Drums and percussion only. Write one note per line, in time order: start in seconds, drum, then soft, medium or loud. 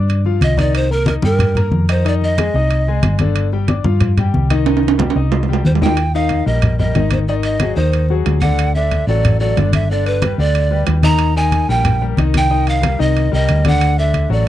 0.09 high conga soft
0.09 high timbale medium
0.25 high conga soft
0.41 high conga medium
0.41 high timbale medium
0.57 high conga medium
0.57 high timbale medium
0.74 high conga soft
0.74 high timbale medium
0.90 high conga soft
1.06 high conga medium
1.06 high timbale medium
1.22 high conga medium
1.39 high conga soft
1.39 low conga medium
1.39 high timbale medium
1.55 high conga soft
1.55 low conga medium
1.55 high timbale medium
1.72 high conga medium
1.89 high timbale loud
2.04 high conga soft
2.04 high timbale medium
2.21 high conga soft
2.38 high conga medium
2.38 high timbale medium
2.55 high conga soft
2.70 high conga soft
2.70 high timbale medium
2.87 high conga soft
3.03 high conga medium
3.03 high timbale medium
3.19 high conga medium
3.19 high timbale medium
3.36 high conga soft
3.36 high timbale medium
3.52 high conga soft
3.68 high conga medium
3.68 high timbale medium
3.84 high conga medium
4.01 high conga soft
4.01 low conga medium
4.01 high timbale medium
4.17 high conga soft
4.17 low conga medium
4.17 high timbale medium
4.34 high conga medium
4.50 high conga medium
4.50 high timbale loud
4.66 high timbale medium
4.77 high timbale medium
4.83 high conga soft
4.88 high timbale medium
4.99 high conga loud
4.99 low timbale loud
5.10 high timbale medium
5.16 high conga soft
5.32 high conga soft
5.32 low timbale loud
5.43 low timbale medium
5.48 high conga soft
5.53 low timbale medium
5.65 high conga medium
5.75 low timbale medium
5.82 high conga medium
5.82 low timbale loud
5.97 high conga soft
5.97 high timbale medium
6.14 high conga soft
6.29 high conga medium
6.29 high timbale medium
6.47 high conga soft
6.62 high conga soft
6.62 low conga medium
6.62 high timbale medium
6.80 high conga soft
6.80 low conga medium
6.95 high conga medium
6.95 high timbale medium
6.95 low timbale medium
7.11 high conga medium
7.11 high timbale loud
7.27 high conga soft
7.43 high conga soft
7.43 high timbale medium
7.60 high conga medium
7.60 high timbale medium
7.76 high conga soft
7.93 high conga soft
7.93 high timbale medium
8.09 high conga soft
8.25 high conga soft
8.25 high timbale medium
8.25 low timbale medium
8.42 high conga medium
8.42 high timbale medium
8.59 high conga soft
8.59 high timbale medium
8.75 high conga soft
8.91 high conga medium
8.91 high timbale medium
9.08 high conga soft
9.25 high conga soft
9.25 low conga medium
9.25 high timbale medium
9.41 high conga soft
9.57 high conga medium
9.57 high timbale medium
9.57 low timbale medium
9.73 high conga medium
9.73 high timbale loud
9.90 high conga soft
10.06 high conga soft
10.06 high timbale medium
10.22 high conga medium
10.22 high timbale medium
10.39 high conga soft
10.55 high conga soft
10.55 high timbale medium
10.72 high conga soft
10.87 high conga soft
10.87 high timbale medium
10.87 low timbale medium
11.03 high conga medium
11.03 high timbale medium
11.19 high conga soft
11.19 high timbale medium
11.36 high conga soft
11.52 high conga medium
11.52 high timbale medium
11.69 high conga soft
11.85 high conga soft
11.85 low conga medium
11.85 high timbale medium
12.01 high conga soft
12.17 high conga medium
12.17 high timbale medium
12.34 high conga medium
12.34 high timbale loud
12.51 high conga soft
12.67 high conga soft
12.67 high timbale medium
12.83 high conga medium
12.83 high timbale medium
13.00 high conga soft
13.16 high conga soft
13.16 high timbale medium
13.33 high conga soft
13.49 high conga soft
13.49 high timbale medium
13.65 high conga medium
13.65 high timbale medium
13.81 high conga soft
13.81 high timbale medium
13.99 high conga soft
14.14 high conga medium
14.14 high timbale medium
14.30 high conga soft